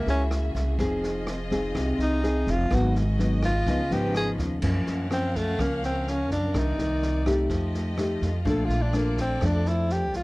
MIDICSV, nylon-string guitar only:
0, 0, Header, 1, 2, 480
1, 0, Start_track
1, 0, Tempo, 479233
1, 787, Time_signature, 4, 2, 24, 8
1, 10248, End_track
2, 0, Start_track
2, 0, Title_t, "Nylon-string guitar"
2, 0, Program_c, 0, 24
2, 0, Note_on_c, 0, 49, 57
2, 67, Note_on_c, 0, 58, 60
2, 75, Note_on_c, 0, 64, 61
2, 78, Note_on_c, 0, 68, 65
2, 750, Note_off_c, 0, 58, 0
2, 751, Note_off_c, 0, 64, 0
2, 755, Note_off_c, 0, 68, 0
2, 766, Note_off_c, 0, 49, 0
2, 791, Note_on_c, 0, 60, 53
2, 793, Note_on_c, 0, 53, 62
2, 797, Note_on_c, 0, 63, 61
2, 802, Note_on_c, 0, 68, 69
2, 1266, Note_off_c, 0, 60, 0
2, 1270, Note_off_c, 0, 63, 0
2, 1271, Note_off_c, 0, 68, 0
2, 1513, Note_on_c, 0, 60, 65
2, 1518, Note_on_c, 0, 63, 66
2, 1522, Note_on_c, 0, 68, 70
2, 1726, Note_off_c, 0, 53, 0
2, 1750, Note_on_c, 0, 48, 59
2, 2192, Note_off_c, 0, 60, 0
2, 2194, Note_off_c, 0, 63, 0
2, 2196, Note_off_c, 0, 68, 0
2, 2233, Note_on_c, 0, 60, 63
2, 2236, Note_on_c, 0, 63, 55
2, 2238, Note_on_c, 0, 68, 68
2, 2540, Note_off_c, 0, 60, 0
2, 2540, Note_off_c, 0, 63, 0
2, 2540, Note_off_c, 0, 68, 0
2, 2684, Note_off_c, 0, 48, 0
2, 2709, Note_on_c, 0, 44, 58
2, 2715, Note_on_c, 0, 54, 58
2, 2715, Note_on_c, 0, 59, 60
2, 2721, Note_on_c, 0, 63, 70
2, 3019, Note_off_c, 0, 59, 0
2, 3020, Note_off_c, 0, 54, 0
2, 3023, Note_off_c, 0, 63, 0
2, 3187, Note_on_c, 0, 54, 56
2, 3193, Note_on_c, 0, 59, 62
2, 3200, Note_on_c, 0, 63, 66
2, 3509, Note_off_c, 0, 54, 0
2, 3513, Note_off_c, 0, 59, 0
2, 3514, Note_off_c, 0, 63, 0
2, 3644, Note_off_c, 0, 44, 0
2, 3673, Note_on_c, 0, 49, 58
2, 3676, Note_on_c, 0, 53, 57
2, 3680, Note_on_c, 0, 59, 57
2, 3685, Note_on_c, 0, 63, 71
2, 3811, Note_off_c, 0, 53, 0
2, 3815, Note_off_c, 0, 59, 0
2, 3816, Note_off_c, 0, 63, 0
2, 3916, Note_on_c, 0, 53, 68
2, 3924, Note_on_c, 0, 59, 61
2, 3929, Note_on_c, 0, 63, 61
2, 4594, Note_off_c, 0, 53, 0
2, 4595, Note_off_c, 0, 59, 0
2, 4599, Note_off_c, 0, 63, 0
2, 4606, Note_off_c, 0, 49, 0
2, 4634, Note_on_c, 0, 42, 56
2, 4635, Note_on_c, 0, 53, 59
2, 4640, Note_on_c, 0, 58, 55
2, 4641, Note_on_c, 0, 61, 67
2, 5072, Note_off_c, 0, 53, 0
2, 5073, Note_off_c, 0, 58, 0
2, 5075, Note_off_c, 0, 61, 0
2, 5108, Note_on_c, 0, 53, 53
2, 5113, Note_on_c, 0, 58, 58
2, 5116, Note_on_c, 0, 61, 55
2, 5549, Note_off_c, 0, 53, 0
2, 5550, Note_off_c, 0, 58, 0
2, 5552, Note_off_c, 0, 61, 0
2, 5566, Note_off_c, 0, 42, 0
2, 5599, Note_on_c, 0, 49, 54
2, 5605, Note_on_c, 0, 53, 53
2, 5605, Note_on_c, 0, 58, 59
2, 5610, Note_on_c, 0, 61, 57
2, 6515, Note_off_c, 0, 53, 0
2, 6517, Note_off_c, 0, 58, 0
2, 6518, Note_off_c, 0, 61, 0
2, 6529, Note_off_c, 0, 49, 0
2, 6555, Note_on_c, 0, 48, 57
2, 6557, Note_on_c, 0, 51, 60
2, 6560, Note_on_c, 0, 58, 62
2, 6567, Note_on_c, 0, 62, 64
2, 6752, Note_off_c, 0, 51, 0
2, 6754, Note_off_c, 0, 58, 0
2, 6758, Note_off_c, 0, 62, 0
2, 6797, Note_on_c, 0, 51, 58
2, 6800, Note_on_c, 0, 58, 70
2, 7233, Note_off_c, 0, 51, 0
2, 7233, Note_off_c, 0, 58, 0
2, 7271, Note_on_c, 0, 57, 63
2, 7274, Note_on_c, 0, 63, 60
2, 7283, Note_on_c, 0, 67, 71
2, 7486, Note_off_c, 0, 48, 0
2, 7511, Note_on_c, 0, 53, 54
2, 7950, Note_off_c, 0, 57, 0
2, 7952, Note_off_c, 0, 63, 0
2, 7954, Note_off_c, 0, 67, 0
2, 7988, Note_on_c, 0, 57, 60
2, 7995, Note_on_c, 0, 63, 59
2, 7997, Note_on_c, 0, 67, 63
2, 8309, Note_off_c, 0, 57, 0
2, 8311, Note_off_c, 0, 63, 0
2, 8314, Note_off_c, 0, 67, 0
2, 8444, Note_off_c, 0, 53, 0
2, 8462, Note_on_c, 0, 46, 58
2, 8465, Note_on_c, 0, 53, 51
2, 8471, Note_on_c, 0, 62, 65
2, 8473, Note_on_c, 0, 57, 62
2, 8906, Note_off_c, 0, 53, 0
2, 8907, Note_off_c, 0, 57, 0
2, 8910, Note_off_c, 0, 62, 0
2, 8948, Note_on_c, 0, 53, 57
2, 8954, Note_on_c, 0, 57, 56
2, 8954, Note_on_c, 0, 62, 60
2, 9388, Note_off_c, 0, 53, 0
2, 9390, Note_off_c, 0, 57, 0
2, 9391, Note_off_c, 0, 62, 0
2, 9401, Note_off_c, 0, 46, 0
2, 9423, Note_on_c, 0, 41, 57
2, 9424, Note_on_c, 0, 53, 62
2, 9429, Note_on_c, 0, 57, 53
2, 9432, Note_on_c, 0, 62, 61
2, 10069, Note_off_c, 0, 53, 0
2, 10070, Note_off_c, 0, 57, 0
2, 10073, Note_off_c, 0, 62, 0
2, 10248, Note_off_c, 0, 41, 0
2, 10248, End_track
0, 0, End_of_file